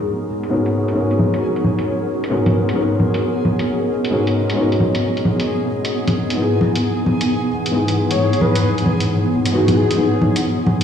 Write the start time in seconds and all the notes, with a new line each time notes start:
Already playing: G#2 B3 C#4 D#4 F#4 G#4 A#4
0.04 C#5
0.43 closed hi-hat
0.49 G#2 B3 C#4 D#4 F#4
0.53 A#4
0.66 closed hi-hat
0.88 G#2, closed hi-hat
0.94 B3 C#4 D#4
0.98 F#4 A#4
1.11 closed hi-hat
1.19 low bongo
1.34 closed hi-hat
1.56 closed hi-hat
1.64 low bongo
1.79 closed hi-hat
2.24 closed hi-hat
2.29 G#2 B3 C#4 D#4 F#4 A#4
2.46 closed hi-hat, low bongo
2.69 G#2, closed hi-hat
2.74 B3 C#4 D#4
2.79 F#4 A#4
3.00 low bongo
3.14 closed hi-hat
3.21 D#5
3.45 low bongo
3.59 closed hi-hat
4.05 closed hi-hat
4.10 G#2 B3 C#4 D#4 F#4 A#4
4.27 closed hi-hat
4.50 G#2, closed hi-hat
4.55 B3 C#4 D#4
4.59 F#4 A#4
4.72 closed hi-hat
4.80 low bongo
4.95 closed hi-hat
5.17 closed hi-hat
5.25 low bongo
5.40 closed hi-hat
5.85 closed hi-hat
6.08 closed hi-hat, low bongo
6.30 G#2, closed hi-hat
6.36 G#2 B3 D#4 E4
6.42 G#4
6.55 E3
6.61 low bongo
6.75 C#5, closed hi-hat
7.06 low bongo
7.21 closed hi-hat
7.66 closed hi-hat
7.71 G#2 B3 D#4 E4
7.75 G#4
7.88 closed hi-hat
8.11 G#2 C#5, closed hi-hat
8.16 B3 D#4 E4
8.22 G#4
8.33 closed hi-hat
8.41 B4, low bongo
8.55 closed hi-hat
8.78 closed hi-hat
8.86 low bongo
9.00 closed hi-hat
9.46 closed hi-hat
9.52 G#2 B3 D#4 E4 F#4 G#4
9.68 closed hi-hat, low bongo
9.77 G#4
9.91 closed hi-hat
9.95 G#2 B3 D#4
10.01 E4 G#4
10.21 low bongo
10.36 closed hi-hat
10.66 F#4, low bongo